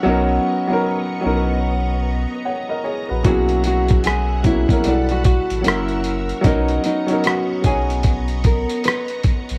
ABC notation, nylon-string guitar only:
X:1
M:4/4
L:1/16
Q:"Swing 16ths" 1/4=75
K:B
V:1 name="Nylon-string guitar"
z16 | F2 F2 G2 E2 =D F F2 E2 z2 | D2 D2 F2 G4 A2 B2 z2 |]